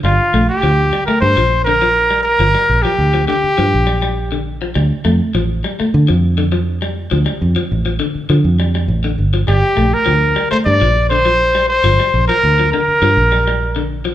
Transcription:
<<
  \new Staff \with { instrumentName = "Trumpet" } { \time 4/4 \key g \minor \tempo 4 = 102 f'8. g'4 bes'16 c''8. bes'4 bes'16~ | bes'8. g'8. g'2 r8 | r1 | r1 |
g'8. bes'4 c''16 d''8. c''4 c''16~ | c''8. bes'8. bes'2 r8 | }
  \new Staff \with { instrumentName = "Clean electric guitar" } { \clef bass \time 4/4 \key g \minor g8 a8 f8 g16 a8 f8 d16 f8 g8 | f16 g8 f8 f16 d8 f8 g16 g8 d8 f16 | g8 a8 f8 g16 a8 f8 d16 f8 g8 | f16 g8 f8 f16 d8 f8 g16 g8 d8 f16 |
g8 a8 f8 g16 a8 f8 d16 f8 g8 | f16 g8 f8 f16 d8 f8 g16 g8 d8 f16 | }
  \new Staff \with { instrumentName = "Fingered electric bass" } { \clef bass \time 4/4 \key g \minor g,,16 r16 bes,,16 r16 d,8 r8 g,16 bes,,4.~ bes,,16 | g,,16 r16 bes,,16 r16 d,8 r8 g,16 bes,,4.~ bes,,16 | d,16 r16 f,16 r16 a,,8 r8 d16 f,4.~ f,16 | d,16 r16 f,16 r16 a,,8 r8 d16 f,8. a,,8 g,,8 |
g,,16 r16 bes,,16 r16 d,8 r8 g,16 bes,,4.~ bes,,16 | g,,16 r16 bes,,16 r16 d,8 r8 g,16 bes,,4.~ bes,,16 | }
>>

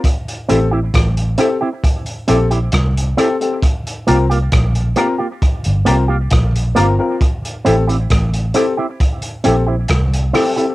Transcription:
<<
  \new Staff \with { instrumentName = "Upright piano" } { \time 4/4 \key a \phrygian \tempo 4 = 67 r8 <c' g' a'>16 r8. <c' g' a'>16 r8. <c' g' a'>16 r8. <c' g' a'>16 <c' g' a'>16 | r8 <c' f' bes'>16 r8. <c' f' bes'>16 r8. <c' f' bes'>16 r8. <c' f' bes'>16 <c' f' bes'>16 | r8 <c' g' a'>16 r8. <c' g' a'>16 r8. <c' g' a'>16 r8. <c' g' a'>16 <c' g' a'>16 | }
  \new Staff \with { instrumentName = "Clean electric guitar" } { \time 4/4 \key a \phrygian r8 <c' e' g'>16 <c' e' g'>16 r8 <c' e' g'>16 <c' e' g'>16 r8 <c' e' g'>16 <c' e' g'>16 r8 <c' e' g'>16 r16 | r8 <bes f' g'>16 <bes f' g'>16 r8 <bes f' g'>16 <bes f' g'>16 r8 <bes f' g'>16 <bes f' g'>16 r8 <bes f' g'>16 r16 | r8 <c' e' g'>16 <c' e' g'>16 r8 <c' e' g'>16 <c' e' g'>16 r8 <c' e' g'>16 <c' e' g'>16 r8 <c' e' g'>16 <c' e' g'>16 | }
  \new Staff \with { instrumentName = "Fingered electric bass" } { \clef bass \time 4/4 \key a \phrygian r8 a,,8 a,,8 r4 bes,,8 c,8 r8 | r8 c,8 bes,,8 r8. g,,16 c,8 bes,,8 g,,16 r16 | r8 a,,8 a,,8 r4 bes,,8 c,8 r8 | }
  \new DrumStaff \with { instrumentName = "Drums" } \drummode { \time 4/4 <hh bd>16 hh16 hh8 <hh bd ss>16 hh16 hh8 <hh bd>16 hh16 hh16 hh16 <hh bd ss>16 hh16 hh16 hh16 | <hh bd>16 hh16 hh16 hh16 <hh bd ss>16 hh16 hh8 <hh bd>16 hh16 hh8 <hh bd ss>16 hh16 hh8 | <hh bd>16 hh16 hh16 hh16 <hh bd ss>16 hh16 hh8 <hh bd>16 hh16 hh8 <hh bd ss>16 hh16 <hho ss>16 hh16 | }
>>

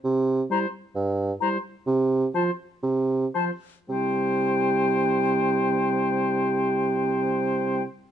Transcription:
<<
  \new Staff \with { instrumentName = "Flute" } { \time 4/4 \key c \major \tempo 4 = 114 r4 bes''4 r4 bes''4 | r4 a''4 r4 a''4 | g''1~ | g''1 | }
  \new Staff \with { instrumentName = "Oboe" } { \time 4/4 \key c \major r4 c''4 r4 c''4 | r4 c''4 r4 c''4 | c''1~ | c''1 | }
  \new Staff \with { instrumentName = "Clarinet" } { \time 4/4 \key c \major r4 e'4 r4 e'4 | r4 f'4 r4 f'4 | e'1~ | e'1 | }
  \new Staff \with { instrumentName = "French horn" } { \clef bass \time 4/4 \key c \major r4 g4 r4 g4 | r4 f4 r4 f4 | g1~ | g1 | }
  \new Staff \with { instrumentName = "Bassoon" } { \clef bass \time 4/4 \key c \major c4 r4 g,4 r4 | c4 r4 c4 r4 | c1~ | c1 | }
>>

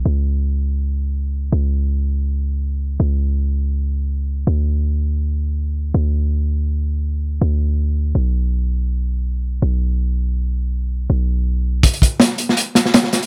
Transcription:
<<
  \new Staff \with { instrumentName = "808-style bass" } { \clef bass \time 4/4 \key b \dorian \tempo 4 = 163 cis,1 | cis,1 | cis,1 | d,1 |
d,1 | d,2 b,,2~ | b,,2 b,,2~ | b,,2 b,,2 |
r1 | }
  \new DrumStaff \with { instrumentName = "Drums" } \drummode { \time 4/4 r4 r4 r4 r4 | r4 r4 r4 r4 | r4 r4 r4 r4 | r4 r4 r4 r4 |
r4 r4 r4 r4 | r4 r4 r4 r4 | r4 r4 r4 r4 | r4 r4 r4 r4 |
<hh bd>16 hh16 <hh bd>8 <hh sn>8 hh16 sn16 hh8 <hh sn>16 sn16 <hh sn>16 sn16 <hh sn>16 hh16 | }
>>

